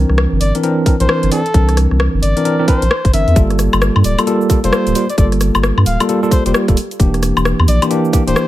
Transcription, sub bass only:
0.09 0.26 C2 medium
0.32 0.39 G1 medium
0.40 0.52 G1 medium
1.00 1.07 A#1 loud
1.23 1.30 G1 medium
1.54 1.87 C2 loud
1.91 2.08 C2 medium
2.14 2.21 G1 medium
2.22 2.34 G1 loud
2.82 2.89 A#1 medium
3.05 3.12 G1 medium
3.13 3.25 G1 loud
3.27 3.34 E2 loud
3.36 3.68 G1 medium
3.73 3.90 G1 medium
3.96 4.03 G2 medium
4.04 4.16 D1 loud
4.64 4.71 F1 medium
4.87 4.94 D1 medium
5.18 5.50 G1 loud
5.55 5.72 G1 medium
5.77 5.84 G2 medium
5.86 5.97 D1 loud
6.46 6.53 F1 medium
6.68 6.75 D1 medium
7.00 7.32 E1 loud
7.36 7.54 E1 medium
7.59 7.66 E2 medium
7.68 7.79 A#1 loud
8.27 8.34 D1 medium

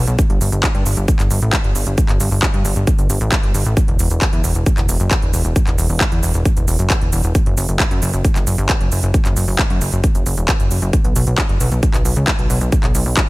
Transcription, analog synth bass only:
0.07 0.17 B1 medium
0.30 0.39 G1 medium
0.41 0.50 G1 loud
0.52 0.62 G1 medium
0.75 0.84 G2 medium
0.86 0.95 G1 loud
0.97 1.06 G1 medium
1.19 1.29 G1 medium
1.31 1.40 G1 loud
1.42 1.51 A1 loud
1.64 1.74 G1 medium
1.75 1.85 G1 loud
1.87 1.96 G1 medium
2.09 2.18 G1 medium
2.20 2.30 G1 loud
2.31 2.41 G1 medium
2.54 2.63 G2 medium
2.65 2.74 G1 loud
2.76 2.86 G1 medium
2.99 3.08 G1 medium
3.10 3.19 G1 loud
3.21 3.30 A1 medium
3.43 3.53 G1 medium
3.55 3.64 G1 loud
3.66 3.75 A1 medium
3.88 3.97 E1 medium
3.99 4.09 E1 loud
4.10 4.20 E1 medium
4.33 4.42 E2 medium
4.44 4.53 E1 loud
4.55 4.65 E1 medium
4.78 4.87 E1 medium
4.89 4.98 E1 loud
5.00 5.09 F#1 medium
5.22 5.32 E1 medium
5.34 5.43 E1 loud
5.45 5.54 E1 medium
5.67 5.77 E1 medium
5.78 5.88 E1 loud
5.89 5.99 E1 medium
6.12 6.21 E2 medium
6.23 6.32 E1 loud
6.34 6.44 E1 medium
6.57 6.66 E1 medium
6.68 6.77 E1 loud
6.79 6.88 F#1 loud
7.01 7.11 E1 medium
7.13 7.22 E1 loud
7.24 7.33 E1 medium
7.46 7.56 F#1 medium
7.57 7.67 F#1 loud
7.69 7.78 F#1 medium
7.91 8.00 F#2 medium
8.02 8.12 F#1 loud
8.13 8.23 F#1 medium
8.36 8.45 F#1 medium
8.47 8.56 F#1 loud
8.58 8.68 G1 loud
8.81 8.90 F#1 medium
8.92 9.01 F#1 loud
9.03 9.12 F#1 medium
9.25 9.35 F#1 medium
9.37 9.46 F#1 loud
9.48 9.57 F#1 medium
9.70 9.80 F#2 medium
9.81 9.91 F#1 loud
9.93 10.02 F#1 medium
10.15 10.24 F#1 medium
10.26 10.36 F#1 loud
10.37 10.47 E1 loud
10.60 10.69 F#1 medium
10.71 10.80 F#1 loud
10.82 10.92 F#1 medium
11.05 11.14 B1 medium
11.16 11.25 B1 loud
11.27 11.36 B1 medium
11.49 11.59 F#1 medium
11.60 11.70 B1 loud
11.72 11.81 B1 medium
11.94 12.03 B1 medium
12.05 12.15 B1 loud
12.16 12.26 C#2 loud
12.39 12.48 B1 medium
12.50 12.59 B1 loud
12.61 12.71 B1 medium
12.84 12.93 B1 medium
12.95 13.04 B1 loud
13.06 13.15 B1 medium

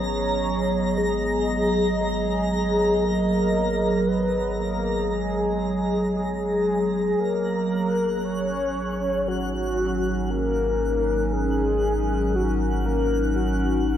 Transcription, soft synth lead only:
0.00 0.99 C#5 loud
0.97 2.00 G#4 medium
2.01 3.06 G#4 loud
3.04 4.09 A#4 medium
4.08 4.60 B4 loud
4.59 5.13 A#4 loud
5.11 6.15 G#4 medium
6.16 7.21 G#4 medium
7.19 8.26 A#4 loud
8.25 9.29 C#5 loud
9.28 10.32 F#4 medium
10.30 11.34 A#4 loud
11.33 12.37 G#4 loud
12.35 12.87 F#4 medium
12.86 13.35 A#4 loud
13.35 13.97 F#4 medium

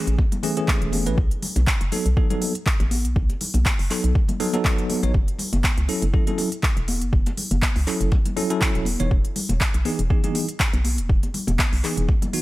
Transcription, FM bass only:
0.07 0.17 A1 medium
0.82 1.08 E1 medium
1.07 1.16 A1 loud
1.18 1.29 B1 medium
1.56 1.66 B1 loud
1.81 1.90 F#1 medium
2.06 2.15 B1 medium
2.80 3.06 A1 medium
3.05 3.14 B1 loud
3.16 3.28 B1 medium
3.54 3.64 B1 medium
3.79 3.89 F#1 medium
4.04 4.14 B1 medium
5.03 5.13 A1 medium
5.14 5.26 F#1 medium
5.53 5.62 F#1 medium
5.78 5.87 C#2 medium
6.02 6.12 F#1 medium
6.77 7.03 E1 medium
7.02 7.11 F#1 loud
7.13 7.24 F#1 loud
7.51 7.61 F#1 loud
7.76 7.85 C#2 medium
8.01 8.10 F#1 medium
8.75 8.96 E1 medium
9.00 9.09 E1 loud
9.11 9.23 E1 loud
9.49 9.59 E1 medium
9.74 9.84 B1 medium
9.99 10.09 E1 medium
10.73 11.00 B1 medium
10.98 11.08 E1 loud
11.09 11.21 E1 loud
11.48 11.57 E1 loud
11.73 11.82 B1 medium
11.97 12.07 E1 medium

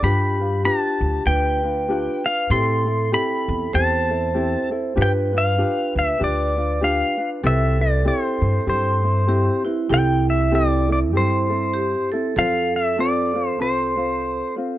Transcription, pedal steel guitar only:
0.04 0.65 B5 loud
0.65 1.23 A5 medium
1.27 2.28 G5 medium
2.26 2.52 F5 medium
2.51 3.14 C6 loud
3.14 3.75 B5 medium
3.75 4.68 A5 medium
5.02 5.11 G5 loud
5.38 5.93 F5 medium
5.99 6.23 E5 medium
6.24 6.86 D5 medium
6.84 7.29 F5 loud
7.47 7.83 E5 loud
7.81 8.07 D5 medium
8.08 8.68 C5 medium
8.69 9.62 C5 medium
9.94 10.29 G5 loud
10.30 10.54 E5 medium
10.55 10.91 D5 medium
10.92 10.99 D5 medium
11.17 12.09 C5 medium
12.39 12.75 F5 loud
12.76 13.00 E5 medium
13.00 13.48 D5 medium
13.48 13.61 C5 medium
13.62 14.54 C5 medium

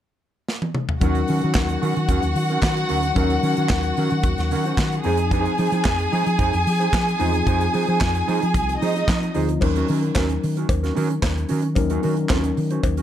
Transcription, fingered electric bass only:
1.02 1.22 D#2 loud
1.29 1.40 D#3 medium
1.44 1.57 D#3 medium
1.55 1.76 D#2 medium
1.83 1.93 D#3 medium
1.97 2.06 D#3 medium
2.09 2.20 D#2 medium
2.23 2.33 D#2 medium
2.35 2.56 D#3 medium
2.63 2.83 D#3 medium
2.90 3.10 D2 medium
3.16 3.37 D#2 medium
3.43 3.54 D#3 medium
3.58 3.67 D#3 medium
3.70 3.90 D#2 medium
3.97 4.08 D#3 medium
4.12 4.21 D#3 loud
4.24 4.35 D#2 loud
4.39 4.53 D#2 medium
4.51 4.72 D#3 medium
4.78 4.98 D#3 medium
5.05 5.46 F2 medium
5.59 5.69 F3 medium
5.72 5.82 F3 medium
5.86 6.06 F2 medium
6.13 6.23 F3 medium
6.27 6.36 F3 medium
6.39 6.50 F2 medium
6.54 6.63 F2 medium
6.67 6.87 F3 medium
6.93 7.13 F3 medium
7.20 7.40 E2 medium
7.47 7.67 F2 loud
7.74 7.85 F3 medium
7.88 7.98 F3 medium
8.01 8.21 F2 medium
8.28 8.39 F3 medium
8.43 8.56 F3 medium
8.55 8.75 C2 loud
8.82 9.02 F3 medium
9.08 9.28 F3 loud
9.36 9.56 D2 medium
9.62 9.82 D#2 loud
9.89 10.09 D#3 medium
10.16 10.36 D#2 medium
10.44 10.63 D#3 medium
10.69 10.90 D#2 medium
10.97 11.17 D#3 medium
11.23 11.43 D#2 medium
11.51 11.78 D#3 medium
11.77 11.97 D#2 loud
12.04 12.24 D#3 medium
12.31 12.51 D#2 medium
12.58 12.78 D#3 medium
12.84 13.02 D#2 medium

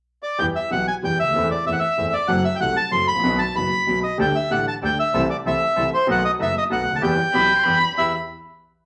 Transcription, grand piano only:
0.38 0.52 E2 medium
0.38 0.53 E3 medium
0.38 0.52 G3 medium
0.38 0.53 B3 soft
0.38 0.53 G4 medium
0.70 0.84 B1 soft
0.70 0.84 B2 soft
0.70 0.84 E3 soft
0.70 0.84 G3 soft
0.70 0.84 B3 soft
0.70 0.85 G4 soft
1.02 1.16 E2 soft
1.02 1.16 E3 soft
1.02 1.16 G3 soft
1.02 1.16 B3 soft
1.02 1.16 G4 soft
1.22 1.27 C#2 soft
1.27 1.31 D2 medium
1.27 1.35 D#2 medium
1.34 1.48 E2 medium
1.34 1.48 E3 medium
1.34 1.48 A3 medium
1.34 1.48 C4 medium
1.34 1.48 A4 medium
1.65 1.79 E2 medium
1.65 1.79 E3 medium
1.65 1.79 A3 soft
1.65 1.79 C4 soft
1.65 1.79 A4 soft
1.97 2.11 E2 soft
1.97 2.11 E3 soft
1.97 2.11 A3 soft
1.97 2.11 C4 soft
1.97 2.11 A4 soft
2.28 2.42 F#2 medium
2.28 2.42 F#3 medium
2.28 2.42 A3 medium
2.28 2.42 C4 medium
2.28 2.42 A4 medium
2.60 2.73 C2 soft
2.60 2.73 C3 medium
2.60 2.73 F#3 soft
2.60 2.73 A3 soft
2.60 2.73 C4 soft
2.60 2.74 A4 soft
2.91 3.05 F#2 soft
2.91 3.05 F#3 medium
2.91 3.05 A3 soft
2.91 3.05 C4 soft
2.91 3.05 A4 soft
3.12 3.15 G#1 soft
3.16 3.20 A1 medium
3.16 3.23 A#1 medium
3.23 3.37 B1 medium
3.23 3.37 B2 medium
3.23 3.37 D#3 medium
3.23 3.37 F#3 medium
3.23 3.37 B3 medium
3.23 3.37 F#4 medium
3.55 3.69 F#1 soft
3.55 3.68 F#2 medium
3.55 3.68 D#3 soft
3.55 3.69 F#3 soft
3.55 3.69 B3 soft
3.55 3.69 F#4 soft
3.87 4.00 B1 soft
3.87 4.00 B2 soft
3.87 4.00 D#3 soft
3.87 4.00 F#3 soft
3.87 4.00 B3 soft
3.87 4.00 F#4 soft
4.18 4.32 D2 medium
4.18 4.32 D3 medium
4.18 4.32 G3 medium
4.18 4.32 A3 medium
4.18 4.32 G4 medium
4.50 4.64 A1 soft
4.50 4.64 A2 soft
4.50 4.64 D3 soft
4.50 4.64 G3 soft
4.50 4.64 A3 soft
4.50 4.64 G4 soft
4.82 4.96 D2 soft
4.82 4.95 D3 soft
4.82 4.96 G3 soft
4.82 4.96 A3 soft
4.82 4.96 G4 soft
5.14 5.27 C2 medium
5.14 5.27 C3 medium
5.14 5.27 E3 medium
5.14 5.27 A3 medium
5.14 5.27 C4 medium
5.14 5.27 A4 medium
5.45 5.58 C2 soft
5.45 5.58 C3 medium
5.45 5.58 E3 soft
5.45 5.58 A3 soft
5.45 5.58 C4 soft
5.45 5.58 A4 soft
5.77 5.90 C2 medium
5.77 5.90 C3 soft
5.77 5.90 E3 soft
5.77 5.90 A3 soft
5.77 5.90 C4 soft
5.77 5.90 A4 soft
6.07 6.20 B1 medium
6.07 6.20 B2 medium
6.07 6.20 D#3 medium
6.07 6.20 A3 medium
6.07 6.20 B3 medium
6.07 6.21 F#4 medium
6.39 6.52 F#1 medium
6.39 6.52 F#2 soft
6.39 6.52 D#3 soft
6.39 6.52 A3 soft
6.39 6.52 B3 soft
6.39 6.52 F#4 soft
6.70 6.83 B1 soft
6.70 6.83 B2 soft
6.70 6.83 D#3 soft
6.70 6.83 A3 soft
6.70 6.83 B3 soft
6.70 6.84 F#4 soft
6.90 6.94 C#2 soft
6.90 6.98 D2 medium
6.99 7.02 D#2 medium
6.99 7.15 E2 medium
6.99 7.15 E3 medium
6.99 7.15 G3 medium
6.99 7.15 B3 medium
6.99 7.15 G4 medium
7.33 7.47 B1 medium
7.33 7.47 B2 medium
7.33 7.47 E3 soft
7.33 7.47 G3 soft
7.33 7.47 B3 soft
7.33 7.47 G4 soft
7.65 7.79 E2 soft
7.65 7.79 E3 soft
7.65 7.79 G3 soft
7.65 7.79 B3 soft
7.65 7.79 G4 soft
7.98 8.11 E2 soft
7.98 8.11 B3 soft
7.98 8.11 E4 soft
7.98 8.11 G4 soft

